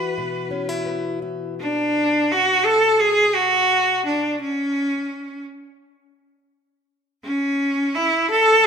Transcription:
0, 0, Header, 1, 3, 480
1, 0, Start_track
1, 0, Tempo, 707547
1, 1077, Time_signature, 4, 2, 24, 8
1, 5881, End_track
2, 0, Start_track
2, 0, Title_t, "Cello"
2, 0, Program_c, 0, 42
2, 0, Note_on_c, 0, 71, 82
2, 602, Note_off_c, 0, 71, 0
2, 1088, Note_on_c, 0, 62, 97
2, 1571, Note_on_c, 0, 66, 96
2, 1582, Note_off_c, 0, 62, 0
2, 1799, Note_on_c, 0, 69, 100
2, 1810, Note_off_c, 0, 66, 0
2, 2034, Note_on_c, 0, 68, 97
2, 2044, Note_off_c, 0, 69, 0
2, 2271, Note_on_c, 0, 66, 96
2, 2281, Note_off_c, 0, 68, 0
2, 2747, Note_off_c, 0, 66, 0
2, 2751, Note_on_c, 0, 62, 79
2, 2977, Note_off_c, 0, 62, 0
2, 2990, Note_on_c, 0, 61, 87
2, 3686, Note_off_c, 0, 61, 0
2, 4912, Note_on_c, 0, 61, 95
2, 5393, Note_on_c, 0, 64, 92
2, 5403, Note_off_c, 0, 61, 0
2, 5628, Note_off_c, 0, 64, 0
2, 5632, Note_on_c, 0, 69, 104
2, 5873, Note_off_c, 0, 69, 0
2, 5881, End_track
3, 0, Start_track
3, 0, Title_t, "Steel-string acoustic guitar"
3, 0, Program_c, 1, 25
3, 0, Note_on_c, 1, 52, 61
3, 0, Note_on_c, 1, 59, 50
3, 0, Note_on_c, 1, 64, 47
3, 0, Note_on_c, 1, 66, 55
3, 121, Note_on_c, 1, 47, 58
3, 342, Note_off_c, 1, 64, 0
3, 345, Note_on_c, 1, 61, 51
3, 467, Note_off_c, 1, 61, 0
3, 467, Note_on_c, 1, 64, 48
3, 577, Note_off_c, 1, 59, 0
3, 585, Note_on_c, 1, 59, 52
3, 820, Note_off_c, 1, 64, 0
3, 828, Note_on_c, 1, 64, 54
3, 1042, Note_off_c, 1, 59, 0
3, 1044, Note_off_c, 1, 64, 0
3, 1080, Note_off_c, 1, 52, 0
3, 2998, Note_off_c, 1, 66, 0
3, 3000, Note_off_c, 1, 47, 0
3, 5881, End_track
0, 0, End_of_file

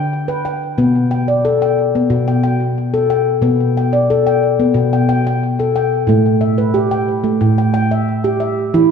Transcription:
0, 0, Header, 1, 2, 480
1, 0, Start_track
1, 0, Tempo, 662983
1, 565, Time_signature, 4, 2, 24, 8
1, 6452, End_track
2, 0, Start_track
2, 0, Title_t, "Handpan"
2, 0, Program_c, 0, 114
2, 0, Note_on_c, 0, 50, 78
2, 0, Note_on_c, 0, 79, 68
2, 87, Note_off_c, 0, 79, 0
2, 204, Note_on_c, 0, 71, 63
2, 326, Note_on_c, 0, 79, 60
2, 378, Note_off_c, 0, 50, 0
2, 445, Note_off_c, 0, 71, 0
2, 563, Note_on_c, 0, 47, 69
2, 566, Note_on_c, 0, 59, 71
2, 687, Note_off_c, 0, 79, 0
2, 804, Note_on_c, 0, 79, 56
2, 805, Note_off_c, 0, 59, 0
2, 927, Note_on_c, 0, 74, 53
2, 1048, Note_on_c, 0, 69, 69
2, 1164, Note_off_c, 0, 79, 0
2, 1173, Note_on_c, 0, 79, 57
2, 1285, Note_off_c, 0, 74, 0
2, 1286, Note_off_c, 0, 69, 0
2, 1342, Note_off_c, 0, 47, 0
2, 1414, Note_on_c, 0, 59, 62
2, 1520, Note_on_c, 0, 47, 77
2, 1528, Note_off_c, 0, 79, 0
2, 1649, Note_on_c, 0, 79, 56
2, 1650, Note_off_c, 0, 59, 0
2, 1754, Note_off_c, 0, 79, 0
2, 1763, Note_on_c, 0, 79, 63
2, 2004, Note_off_c, 0, 79, 0
2, 2126, Note_on_c, 0, 69, 66
2, 2245, Note_on_c, 0, 79, 60
2, 2300, Note_off_c, 0, 47, 0
2, 2366, Note_off_c, 0, 69, 0
2, 2475, Note_on_c, 0, 47, 71
2, 2479, Note_on_c, 0, 59, 69
2, 2606, Note_off_c, 0, 79, 0
2, 2722, Note_off_c, 0, 59, 0
2, 2732, Note_on_c, 0, 79, 54
2, 2845, Note_on_c, 0, 74, 55
2, 2970, Note_on_c, 0, 69, 72
2, 3080, Note_off_c, 0, 79, 0
2, 3089, Note_on_c, 0, 79, 57
2, 3204, Note_off_c, 0, 74, 0
2, 3208, Note_off_c, 0, 69, 0
2, 3257, Note_off_c, 0, 47, 0
2, 3327, Note_on_c, 0, 59, 67
2, 3434, Note_on_c, 0, 47, 77
2, 3446, Note_off_c, 0, 79, 0
2, 3567, Note_off_c, 0, 59, 0
2, 3569, Note_on_c, 0, 79, 54
2, 3675, Note_off_c, 0, 79, 0
2, 3684, Note_on_c, 0, 79, 68
2, 3805, Note_off_c, 0, 79, 0
2, 3814, Note_on_c, 0, 79, 55
2, 4052, Note_on_c, 0, 69, 62
2, 4159, Note_off_c, 0, 79, 0
2, 4168, Note_on_c, 0, 79, 59
2, 4217, Note_off_c, 0, 47, 0
2, 4290, Note_off_c, 0, 69, 0
2, 4395, Note_on_c, 0, 45, 74
2, 4408, Note_on_c, 0, 57, 73
2, 4529, Note_off_c, 0, 79, 0
2, 4640, Note_on_c, 0, 76, 55
2, 4647, Note_off_c, 0, 57, 0
2, 4764, Note_on_c, 0, 71, 54
2, 4880, Note_on_c, 0, 67, 72
2, 5005, Note_off_c, 0, 76, 0
2, 5005, Note_on_c, 0, 79, 59
2, 5124, Note_off_c, 0, 67, 0
2, 5125, Note_off_c, 0, 71, 0
2, 5178, Note_off_c, 0, 45, 0
2, 5239, Note_on_c, 0, 57, 64
2, 5363, Note_on_c, 0, 45, 81
2, 5365, Note_off_c, 0, 79, 0
2, 5484, Note_off_c, 0, 57, 0
2, 5489, Note_on_c, 0, 79, 53
2, 5593, Note_off_c, 0, 79, 0
2, 5602, Note_on_c, 0, 79, 66
2, 5730, Note_on_c, 0, 76, 54
2, 5845, Note_off_c, 0, 79, 0
2, 5968, Note_on_c, 0, 67, 66
2, 6074, Note_off_c, 0, 76, 0
2, 6082, Note_on_c, 0, 76, 60
2, 6143, Note_off_c, 0, 45, 0
2, 6208, Note_off_c, 0, 67, 0
2, 6327, Note_on_c, 0, 52, 70
2, 6329, Note_on_c, 0, 64, 74
2, 6446, Note_off_c, 0, 76, 0
2, 6452, Note_off_c, 0, 52, 0
2, 6452, Note_off_c, 0, 64, 0
2, 6452, End_track
0, 0, End_of_file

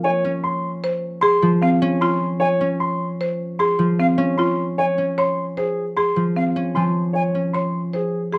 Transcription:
0, 0, Header, 1, 5, 480
1, 0, Start_track
1, 0, Tempo, 394737
1, 51, Time_signature, 6, 2, 24, 8
1, 10193, End_track
2, 0, Start_track
2, 0, Title_t, "Grand piano"
2, 0, Program_c, 0, 0
2, 52, Note_on_c, 0, 73, 77
2, 363, Note_off_c, 0, 73, 0
2, 530, Note_on_c, 0, 84, 60
2, 842, Note_off_c, 0, 84, 0
2, 1475, Note_on_c, 0, 84, 83
2, 1797, Note_off_c, 0, 84, 0
2, 1963, Note_on_c, 0, 77, 66
2, 2280, Note_off_c, 0, 77, 0
2, 2445, Note_on_c, 0, 84, 63
2, 2760, Note_off_c, 0, 84, 0
2, 2915, Note_on_c, 0, 73, 76
2, 3237, Note_off_c, 0, 73, 0
2, 3406, Note_on_c, 0, 84, 58
2, 3721, Note_off_c, 0, 84, 0
2, 4368, Note_on_c, 0, 84, 71
2, 4681, Note_off_c, 0, 84, 0
2, 4854, Note_on_c, 0, 77, 61
2, 5164, Note_off_c, 0, 77, 0
2, 5321, Note_on_c, 0, 84, 62
2, 5639, Note_off_c, 0, 84, 0
2, 5815, Note_on_c, 0, 73, 73
2, 6124, Note_off_c, 0, 73, 0
2, 6303, Note_on_c, 0, 84, 55
2, 6607, Note_off_c, 0, 84, 0
2, 6776, Note_on_c, 0, 68, 57
2, 7085, Note_off_c, 0, 68, 0
2, 7254, Note_on_c, 0, 84, 69
2, 7564, Note_off_c, 0, 84, 0
2, 7739, Note_on_c, 0, 77, 57
2, 8045, Note_off_c, 0, 77, 0
2, 8206, Note_on_c, 0, 84, 50
2, 8521, Note_off_c, 0, 84, 0
2, 8673, Note_on_c, 0, 73, 57
2, 8996, Note_off_c, 0, 73, 0
2, 9160, Note_on_c, 0, 84, 49
2, 9479, Note_off_c, 0, 84, 0
2, 9659, Note_on_c, 0, 68, 52
2, 9965, Note_off_c, 0, 68, 0
2, 10135, Note_on_c, 0, 84, 59
2, 10193, Note_off_c, 0, 84, 0
2, 10193, End_track
3, 0, Start_track
3, 0, Title_t, "Flute"
3, 0, Program_c, 1, 73
3, 40, Note_on_c, 1, 80, 74
3, 132, Note_off_c, 1, 80, 0
3, 1967, Note_on_c, 1, 77, 66
3, 2057, Note_off_c, 1, 77, 0
3, 2924, Note_on_c, 1, 80, 78
3, 3015, Note_off_c, 1, 80, 0
3, 4854, Note_on_c, 1, 77, 67
3, 4943, Note_off_c, 1, 77, 0
3, 5812, Note_on_c, 1, 80, 73
3, 5902, Note_off_c, 1, 80, 0
3, 7737, Note_on_c, 1, 77, 61
3, 7826, Note_off_c, 1, 77, 0
3, 8210, Note_on_c, 1, 80, 48
3, 8301, Note_off_c, 1, 80, 0
3, 8693, Note_on_c, 1, 80, 64
3, 8782, Note_off_c, 1, 80, 0
3, 10193, End_track
4, 0, Start_track
4, 0, Title_t, "Marimba"
4, 0, Program_c, 2, 12
4, 1018, Note_on_c, 2, 72, 68
4, 1325, Note_off_c, 2, 72, 0
4, 1491, Note_on_c, 2, 68, 75
4, 1803, Note_off_c, 2, 68, 0
4, 1976, Note_on_c, 2, 60, 62
4, 2284, Note_off_c, 2, 60, 0
4, 2455, Note_on_c, 2, 65, 72
4, 2764, Note_off_c, 2, 65, 0
4, 3900, Note_on_c, 2, 72, 59
4, 4206, Note_off_c, 2, 72, 0
4, 4377, Note_on_c, 2, 68, 65
4, 4685, Note_off_c, 2, 68, 0
4, 4859, Note_on_c, 2, 60, 64
4, 5165, Note_off_c, 2, 60, 0
4, 5337, Note_on_c, 2, 65, 67
4, 5645, Note_off_c, 2, 65, 0
4, 6298, Note_on_c, 2, 73, 64
4, 6605, Note_off_c, 2, 73, 0
4, 6777, Note_on_c, 2, 72, 58
4, 7085, Note_off_c, 2, 72, 0
4, 7263, Note_on_c, 2, 68, 59
4, 7567, Note_off_c, 2, 68, 0
4, 7739, Note_on_c, 2, 60, 50
4, 8046, Note_off_c, 2, 60, 0
4, 8214, Note_on_c, 2, 65, 52
4, 8524, Note_off_c, 2, 65, 0
4, 9176, Note_on_c, 2, 73, 52
4, 9484, Note_off_c, 2, 73, 0
4, 9649, Note_on_c, 2, 72, 51
4, 9962, Note_off_c, 2, 72, 0
4, 10124, Note_on_c, 2, 68, 53
4, 10193, Note_off_c, 2, 68, 0
4, 10193, End_track
5, 0, Start_track
5, 0, Title_t, "Harp"
5, 0, Program_c, 3, 46
5, 0, Note_on_c, 3, 53, 67
5, 299, Note_on_c, 3, 61, 62
5, 1717, Note_off_c, 3, 53, 0
5, 1731, Note_on_c, 3, 53, 67
5, 2197, Note_off_c, 3, 61, 0
5, 2211, Note_on_c, 3, 61, 84
5, 3155, Note_off_c, 3, 61, 0
5, 3170, Note_on_c, 3, 61, 63
5, 4591, Note_off_c, 3, 53, 0
5, 4606, Note_on_c, 3, 53, 69
5, 5066, Note_off_c, 3, 61, 0
5, 5080, Note_on_c, 3, 61, 81
5, 6041, Note_off_c, 3, 61, 0
5, 6056, Note_on_c, 3, 61, 58
5, 7479, Note_off_c, 3, 53, 0
5, 7494, Note_on_c, 3, 53, 58
5, 7962, Note_off_c, 3, 61, 0
5, 7977, Note_on_c, 3, 61, 65
5, 8210, Note_off_c, 3, 53, 0
5, 8225, Note_on_c, 3, 53, 51
5, 8920, Note_off_c, 3, 61, 0
5, 8934, Note_on_c, 3, 61, 51
5, 10193, Note_off_c, 3, 53, 0
5, 10193, Note_off_c, 3, 61, 0
5, 10193, End_track
0, 0, End_of_file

